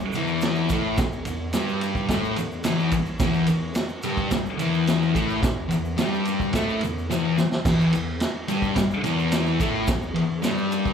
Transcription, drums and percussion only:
0.13 ride medium
0.13 shaker medium
0.27 shaker soft
0.41 snare loud
0.41 ride medium
0.41 shaker medium
0.55 shaker soft
0.69 kick medium
0.69 ride medium
0.69 shaker medium
0.98 kick loud
0.98 snare loud
0.98 ride medium
0.98 shaker loud
1.12 shaker soft
1.25 ride medium
1.25 shaker medium
1.53 snare loud
1.53 ride medium
1.53 shaker loud
1.69 shaker soft
1.81 ride medium
1.81 shaker medium
1.95 kick medium
1.95 shaker soft
2.09 kick medium
2.09 snare loud
2.09 ride medium
2.09 shaker loud
2.25 shaker soft
2.36 ride medium
2.36 shaker medium
2.52 shaker soft
2.64 snare loud
2.64 ride loud
2.64 shaker medium
2.79 shaker soft
2.92 kick medium
2.92 ride medium
2.92 shaker medium
3.06 shaker soft
3.20 kick loud
3.20 snare loud
3.20 ride loud
3.20 shaker medium
3.33 shaker soft
3.47 ride medium
3.47 shaker medium
3.75 snare loud
3.75 ride loud
3.75 shaker medium
3.89 shaker soft
4.03 ride medium
4.03 shaker medium
4.17 kick medium
4.17 shaker soft
4.31 kick medium
4.31 snare loud
4.31 ride medium
4.31 shaker medium
4.46 shaker soft
4.59 ride medium
4.59 shaker medium
4.74 shaker soft
4.87 snare loud
4.87 ride medium
4.87 shaker medium
5.02 shaker soft
5.15 kick medium
5.15 ride medium
5.15 shaker medium
5.30 shaker soft
5.43 kick loud
5.43 snare loud
5.43 ride medium
5.43 shaker loud
5.71 ride medium
5.71 shaker medium
5.85 shaker soft
5.98 snare loud
5.98 ride medium
5.98 shaker medium
6.14 shaker soft
6.25 ride medium
6.25 shaker medium
6.40 kick medium
6.40 shaker soft
6.53 kick medium
6.53 snare loud
6.53 ride medium
6.53 shaker medium
6.70 shaker soft
6.81 ride medium
6.81 shaker medium
6.98 shaker soft
7.09 snare medium
7.09 shaker medium
7.38 snare medium
7.38 shaker medium
7.52 snare medium
7.52 shaker soft
7.65 kick loud
7.65 snare loud
7.65 crash loud
7.65 shaker medium
7.81 shaker soft
7.93 ride medium
7.93 shaker medium
8.20 snare loud
8.20 ride loud
8.20 shaker medium
8.48 ride medium
8.48 shaker medium
8.62 kick medium
8.62 shaker soft
8.76 kick medium
8.76 snare loud
8.76 ride loud
8.76 shaker medium
8.91 shaker soft
9.04 ride medium
9.04 shaker medium
9.19 shaker soft
9.32 snare loud
9.32 ride loud
9.32 shaker loud
9.46 shaker soft
9.60 kick medium
9.60 ride medium
9.60 shaker medium
9.88 kick loud
9.88 snare loud
9.88 ride loud
9.88 shaker loud
10.02 shaker soft
10.16 ride medium
10.43 snare loud
10.43 ride medium
10.43 shaker medium
10.57 shaker soft
10.72 ride medium
10.72 shaker medium
10.85 kick medium
10.85 shaker soft

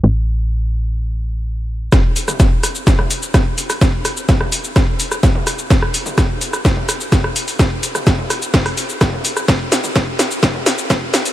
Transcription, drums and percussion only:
1.92 kick loud
1.92 cross-stick soft
1.92 snare soft
1.92 shaker medium
2.16 open hi-hat loud
2.16 shaker medium
2.28 cross-stick soft
2.28 mid tom medium
2.28 shaker medium
2.40 kick loud
2.40 snare soft
2.40 shaker medium
2.63 cross-stick soft
2.63 open hi-hat medium
2.63 shaker medium
2.75 shaker medium
2.87 kick loud
2.87 snare soft
2.87 shaker medium
2.99 cross-stick soft
2.99 mid tom medium
3.10 open hi-hat medium
3.10 shaker medium
3.22 shaker medium
3.34 kick loud
3.34 cross-stick soft
3.34 snare soft
3.34 shaker medium
3.58 open hi-hat loud
3.58 shaker medium
3.70 cross-stick soft
3.70 open hi-hat medium
3.70 shaker medium
3.81 kick loud
3.81 snare soft
3.81 shaker medium
4.05 cross-stick soft
4.05 open hi-hat loud
4.05 shaker medium
4.17 shaker medium
4.29 kick loud
4.29 snare medium
4.29 shaker medium
4.41 cross-stick soft
4.41 mid tom medium
4.52 open hi-hat loud
4.52 shaker medium
4.64 shaker medium
4.76 kick loud
4.76 cross-stick soft
4.76 snare medium
4.76 shaker medium
5.00 open hi-hat loud
5.00 shaker medium
5.12 cross-stick soft
5.12 shaker medium
5.23 kick loud
5.23 snare medium
5.23 shaker medium
5.35 mid tom medium
5.47 cross-stick soft
5.47 open hi-hat loud
5.47 shaker medium
5.59 shaker medium
5.70 kick loud
5.70 snare medium
5.70 shaker medium
5.82 cross-stick medium
5.94 open hi-hat loud
5.94 shaker medium
6.06 mid tom medium
6.06 shaker medium
6.18 kick loud
6.18 cross-stick soft
6.18 snare medium
6.18 shaker medium
6.41 open hi-hat loud
6.41 shaker medium
6.53 cross-stick medium
6.53 shaker medium
6.65 kick loud
6.65 snare medium
6.65 shaker medium
6.77 mid tom medium
6.89 cross-stick soft
6.89 open hi-hat loud
6.89 shaker medium
7.01 shaker medium
7.12 kick loud
7.12 snare medium
7.12 shaker medium
7.24 cross-stick soft
7.36 open hi-hat loud
7.36 shaker medium
7.48 open hi-hat medium
7.48 shaker medium
7.59 kick loud
7.59 cross-stick medium
7.59 snare medium
7.59 shaker medium
7.83 open hi-hat loud
7.83 shaker medium
7.95 cross-stick medium
7.95 mid tom medium
7.95 shaker soft
8.07 kick loud
8.07 snare medium
8.07 shaker medium
8.19 mid tom medium
8.30 cross-stick medium
8.30 open hi-hat loud
8.30 shaker medium
8.42 shaker medium
8.54 kick loud
8.54 snare medium
8.54 shaker medium
8.66 cross-stick soft
8.66 open hi-hat medium
8.77 open hi-hat loud
8.77 shaker medium
8.89 shaker medium
9.01 kick loud
9.01 cross-stick medium
9.01 snare medium
9.01 shaker medium
9.13 mid tom medium
9.25 open hi-hat loud
9.25 shaker medium
9.37 cross-stick medium
9.37 shaker medium
9.48 kick loud
9.48 snare medium
9.48 shaker medium
9.72 snare medium
9.72 open hi-hat loud
9.72 shaker medium
9.84 mid tom medium
9.84 shaker medium
9.96 kick loud
9.96 snare medium
9.96 shaker medium
10.19 snare medium
10.19 open hi-hat loud
10.19 shaker medium
10.31 shaker medium
10.43 kick loud
10.43 snare medium
10.43 shaker medium
10.55 mid tom medium
10.66 snare medium
10.66 open hi-hat loud
10.66 shaker medium
10.78 shaker medium
10.90 kick loud
10.90 snare medium
10.90 shaker medium
11.14 snare medium
11.14 open hi-hat loud
11.14 shaker medium
11.25 open hi-hat medium
11.25 shaker medium

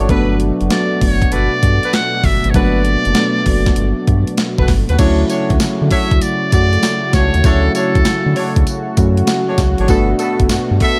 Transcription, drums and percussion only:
0.09 kick loud
0.09 closed hi-hat medium
0.40 closed hi-hat medium
0.61 closed hi-hat soft
0.70 snare loud
0.70 closed hi-hat medium
1.01 kick medium
1.01 open hi-hat medium
1.22 kick loud
1.22 closed hi-hat medium
1.32 closed hi-hat medium
1.63 kick medium
1.63 closed hi-hat medium
1.83 closed hi-hat medium
1.93 snare loud
1.93 closed hi-hat medium
2.24 kick loud
2.24 open hi-hat medium
2.44 closed hi-hat medium
2.54 kick loud
2.54 closed hi-hat medium
2.85 closed hi-hat medium
3.05 closed hi-hat soft
3.15 snare loud
3.15 closed hi-hat medium
3.46 kick medium
3.46 open hi-hat medium
3.66 kick medium
3.66 snare medium
3.66 closed hi-hat medium
3.76 closed hi-hat medium
4.07 kick medium
4.07 closed hi-hat medium
4.27 closed hi-hat medium
4.37 snare loud
4.37 closed hi-hat medium
4.58 kick loud
4.68 kick loud
4.68 snare medium
4.68 open hi-hat medium
4.89 closed hi-hat medium
4.99 kick loud
4.99 closed hi-hat medium
4.99 crash loud
4.99 tambourine medium
5.30 closed hi-hat medium
5.30 tambourine medium
5.50 kick medium
5.50 closed hi-hat soft
5.60 snare loud
5.60 closed hi-hat medium
5.60 tambourine loud
5.91 kick medium
5.91 open hi-hat medium
6.11 kick loud
6.11 closed hi-hat medium
6.21 closed hi-hat medium
6.21 tambourine medium
6.52 kick loud
6.52 closed hi-hat medium
6.52 tambourine medium
6.73 closed hi-hat medium
6.83 snare loud
6.83 closed hi-hat medium
6.83 tambourine medium
7.13 kick loud
7.13 snare medium
7.13 closed hi-hat medium
7.13 tambourine medium
7.34 closed hi-hat medium
7.44 kick loud
7.44 closed hi-hat medium
7.44 tambourine medium
7.75 closed hi-hat medium
7.75 tambourine medium
7.95 kick loud
7.95 closed hi-hat soft
8.05 snare loud
8.05 closed hi-hat medium
8.05 tambourine loud
8.36 open hi-hat medium
8.56 kick loud
8.56 closed hi-hat medium
8.67 closed hi-hat medium
8.67 tambourine medium
8.97 kick medium
8.97 closed hi-hat medium
8.97 tambourine medium
9.17 closed hi-hat medium
9.27 snare loud
9.27 closed hi-hat medium
9.27 tambourine medium
9.58 kick loud
9.58 snare medium
9.58 closed hi-hat medium
9.58 tambourine medium
9.78 closed hi-hat medium
9.88 kick loud
9.88 closed hi-hat medium
9.88 tambourine medium
10.19 closed hi-hat medium
10.19 tambourine medium
10.40 kick loud
10.40 closed hi-hat soft
10.49 snare loud
10.49 closed hi-hat medium
10.49 tambourine loud
10.80 kick medium
10.80 open hi-hat medium

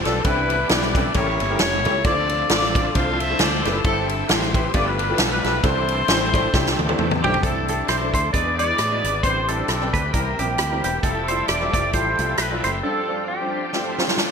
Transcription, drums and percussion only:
0.05 snare soft
0.05 ride medium
0.24 kick loud
0.24 ride medium
0.50 ride medium
0.69 snare loud
0.69 ride medium
0.82 snare soft
0.95 kick loud
0.95 ride medium
1.14 kick loud
1.14 ride medium
1.40 ride medium
1.59 snare loud
1.59 ride medium
1.85 ride medium
2.04 kick loud
2.04 ride medium
2.29 ride medium
2.49 snare loud
2.49 ride medium
2.62 snare soft
2.75 kick loud
2.75 ride medium
2.95 kick loud
2.95 ride medium
3.20 ride medium
3.39 snare loud
3.39 ride medium
3.65 snare soft
3.65 ride medium
3.85 kick loud
3.85 ride medium
4.09 ride medium
4.29 snare loud
4.29 ride medium
4.42 snare soft
4.54 kick loud
4.54 ride medium
4.74 kick loud
4.74 ride medium
4.99 ride medium
5.18 snare loud
5.18 ride medium
5.44 snare soft
5.44 ride medium
5.64 kick loud
5.64 ride medium
5.88 ride medium
6.08 snare loud
6.08 ride medium
6.34 kick loud
6.34 ride medium
6.53 kick loud
6.53 snare medium
6.66 snare medium
6.79 high tom medium
6.89 high tom medium
6.99 mid tom medium
7.11 mid tom medium
7.24 floor tom loud
7.34 floor tom loud
7.43 kick loud
7.43 closed hi-hat medium
7.68 closed hi-hat medium
7.88 cross-stick loud
7.88 closed hi-hat medium
8.14 kick medium
8.14 closed hi-hat medium
8.34 kick medium
8.34 closed hi-hat medium
8.59 closed hi-hat medium
8.78 cross-stick loud
8.78 closed hi-hat medium
9.04 cross-stick soft
9.04 closed hi-hat medium
9.23 kick loud
9.23 closed hi-hat medium
9.48 closed hi-hat medium
9.68 cross-stick medium
9.68 closed hi-hat medium
9.81 cross-stick soft
9.94 kick medium
9.94 closed hi-hat medium
10.14 kick medium
10.14 closed hi-hat medium
10.39 closed hi-hat medium
10.58 cross-stick loud
10.58 closed hi-hat medium
10.84 cross-stick soft
10.84 closed hi-hat medium
11.03 kick medium
11.03 closed hi-hat medium
11.28 closed hi-hat medium
11.48 cross-stick loud
11.48 closed hi-hat medium
11.60 cross-stick soft
11.73 kick medium
11.73 closed hi-hat medium
11.93 kick medium
11.93 closed hi-hat medium
12.18 closed hi-hat medium
12.37 cross-stick loud
12.37 closed hi-hat medium
12.64 cross-stick soft
12.64 closed hi-hat medium
13.73 snare soft
13.98 snare medium
14.08 snare medium
14.17 snare medium

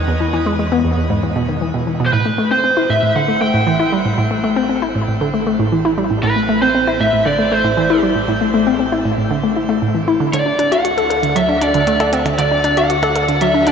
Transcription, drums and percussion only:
10.33 closed hi-hat medium
10.59 closed hi-hat medium
10.72 closed hi-hat soft
10.85 closed hi-hat medium
10.98 closed hi-hat soft
11.11 closed hi-hat medium
11.23 closed hi-hat medium
11.36 closed hi-hat medium
11.62 closed hi-hat medium
11.74 closed hi-hat soft
11.87 closed hi-hat medium
12.00 closed hi-hat soft
12.00 percussion blips medium
12.13 closed hi-hat medium
12.26 closed hi-hat medium
12.26 percussion blips medium
12.39 closed hi-hat medium
12.64 closed hi-hat medium
12.77 closed hi-hat medium
12.90 closed hi-hat medium
13.03 closed hi-hat soft
13.03 percussion blips medium
13.16 closed hi-hat medium
13.28 closed hi-hat medium
13.41 closed hi-hat medium
13.67 closed hi-hat medium

